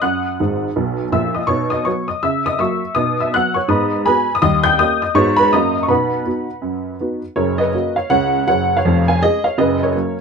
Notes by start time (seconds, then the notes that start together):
0.02 F#2 F#5 D#6 F#6
0.40 G#1 G#2
0.76 B1 B2
1.12 A#1 A#2 E5 E6
1.35 D#5 D#6
1.47 B2 D#4 C#5 C#6
1.70 D#5 D#6
1.85 F#3 B3 F#4 C#5 C#6
2.08 D#5 D#6
2.23 C#3 E5 E6
2.46 D#5 D#6
2.59 F#3 A#3 F#4 E5 C#6 E6
2.95 B2 D#4 D#5 D#6
3.20 E5 E6
3.34 F#3 B3 F#4 F#5 F#6
3.54 C#5 C#6
3.68 G#2 B3 D#5 B5 D#6
4.05 G#3 B3 F#4 B4 G#5 B5
4.35 D#6
4.42 D#2 G3 D#5 D#6
4.64 G5 G6
4.79 A#3 C#4 G4 D#5 D#6
5.02 D#5 D#6
5.15 G#2 G#3 B3 F#4 C#5 C#6
5.37 B4 B5
5.53 F#2 A#3 C#4 F#4 D#5 A#5 D#6
5.83 C#6
5.88 B2 D#4 B4 F#5 B5
6.25 B3 D#4 F#4
6.62 F#2
7.00 B3 D#4 F#4
7.36 F#1 F#2 A#4 C#5
7.58 B4 D#5
7.73 A#3 C#4 F#4
7.96 C#5 F5
8.10 C#2 C#3 C#5 F#5
8.47 F#1 F#2 C#5 F#5
8.77 C#5 F5
8.85 F1 F2
9.08 F5 G#5
9.23 G#3 C#4 G#4 D#5
9.44 C#5 F5
9.58 F#1 F#2 B4 D#5
9.83 A#4 C#5
9.95 F#3 A#3 C#4